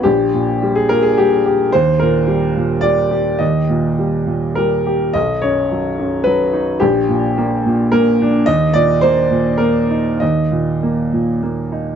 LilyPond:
<<
  \new Staff \with { instrumentName = "Grand piano" } { \time 3/4 \key ees \major \tempo 4 = 107 g'4~ g'16 aes'16 bes'16 aes'16 g'4 | c''8 bes'4. d''4 | ees''2 bes'4 | dis''8 des''4. b'4 |
g'4. r8 bes'4 | ees''8 d''8 c''4 bes'4 | ees''2 r4 | }
  \new Staff \with { instrumentName = "Grand piano" } { \clef bass \time 3/4 \key ees \major bes,,8 bes,8 g8 bes,8 g8 g'8 | ees,8 bes,8 g8 bes,8 g8 g'8 | ees,8 bes,8 g8 bes,8 g8 g'8 | b,,8 fis,8 fis8 fis,8 fis8 dis'8 |
bes,,8 bes,8 bes8 bes,8 bes8 d'8 | ees,8 bes,8 bes8 bes,8 bes8 ees'8 | ees,8 bes,8 bes8 bes,8 bes8 ees'8 | }
>>